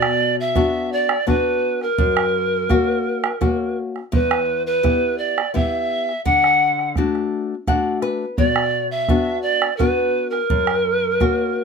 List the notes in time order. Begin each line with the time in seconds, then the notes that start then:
Already playing: B2 D5
0.02 bombo rim
0.40 E5
0.55 B3 D4 F#4, bombo rim, bombo low
0.92 D5
1.09 bombo rim
1.27 B3 D4 F#4 B4, bombo rim, bombo low
1.81 A#4, bombo rim
1.98 F#2, bombo low
2.17 bombo rim
2.69 A#3 C#4 F#4, bombo rim, bombo low
3.24 bombo rim
3.41 A#3 C#4 F#4, bombo rim, bombo low
3.96 bombo rim
4.12 E2 B4, bombo low
4.31 bombo rim
4.66 B4
4.83 B3 E4 G4, bombo rim, bombo low
5.18 D5
5.38 bombo rim
5.54 B3 E4 G4 E5, bombo rim, bombo low
6.09 bombo rim
6.25 D3 F#5, bombo low
6.44 bombo rim
6.79 bombo rim
6.96 A3 D4 F#4, bombo rim, bombo low
7.15 bombo rim
7.67 A3 D4 F#4 F#5, bombo rim, bombo low
8.02 B4, bombo rim
8.38 B2 D5, bombo low
8.56 bombo rim
8.91 E5
9.09 B3 D4 F#4, bombo rim, bombo low
9.42 D5
9.62 bombo rim
9.77 B3 D4 F#4 B4, bombo rim, bombo low
10.30 A#4, bombo rim
10.50 F#2, bombo low
10.67 bombo rim
11.20 A#3 C#4 F#4, bombo rim, bombo low